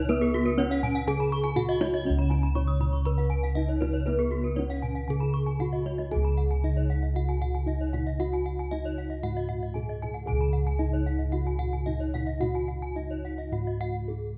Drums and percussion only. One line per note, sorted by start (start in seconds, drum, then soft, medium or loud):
0.09 kendang high medium
0.22 kendang slap soft
0.47 kendang slap soft
0.59 kendang high medium
0.71 kendang slap soft
0.83 kendang low medium
1.08 kendang low medium
1.20 kendang slap soft
1.45 kendang slap soft
1.57 kendang low medium
1.81 kendang high medium
1.93 kendang slap soft
2.18 kendang slap soft
2.31 kendang high medium
2.43 kendang slap soft
2.55 kendang high soft
2.55 kendang low soft
2.68 kendang slap soft
2.80 kendang high soft
2.80 kendang low soft
2.93 kendang slap soft
3.06 kendang low soft
3.19 kendang slap soft
3.44 kendang slap soft
3.70 kendang slap soft
3.82 kendang high soft
3.82 kendang low soft
3.95 kendang slap soft
4.07 kendang high soft
4.20 kendang slap soft
4.46 kendang slap soft
4.59 kendang high soft
4.71 kendang slap soft
4.83 kendang low soft
4.97 kendang slap soft
5.10 kendang low soft
5.22 kendang slap soft
5.48 kendang slap soft
5.60 kendang low soft
5.73 kendang low soft
5.86 kendang high soft
5.99 kendang high soft
6.11 kendang high soft
6.11 kendang low soft
6.25 kendang slap soft
6.63 kendang high soft
7.02 kendang slap soft
7.15 kendang high soft
7.41 kendang low soft
7.55 kendang slap soft
7.67 kendang low soft
7.80 kendang slap soft
7.94 kendang high soft
7.94 kendang low soft
8.08 kendang slap soft
8.21 kendang high soft
8.21 kendang low soft
8.33 kendang slap soft
8.72 kendang high soft
9.11 kendang slap soft
9.24 kendang high soft
9.51 kendang low soft
9.63 kendang slap soft
9.77 kendang low soft
9.90 kendang slap soft
10.03 kendang high soft
10.03 kendang low soft
10.17 kendang slap soft
10.29 kendang high soft
10.29 kendang low soft
10.41 kendang slap soft
10.81 kendang high soft
11.20 kendang slap soft
11.33 kendang high soft
11.60 kendang low soft
11.74 kendang slap soft
11.88 kendang low soft
12.01 kendang slap soft
12.15 kendang high soft
12.15 kendang low soft
12.42 kendang high soft
12.42 kendang low soft
12.57 kendang slap soft
12.85 kendang slap soft
12.98 kendang high soft
13.11 kendang slap soft
13.40 kendang slap soft
13.53 kendang high soft
13.68 kendang slap soft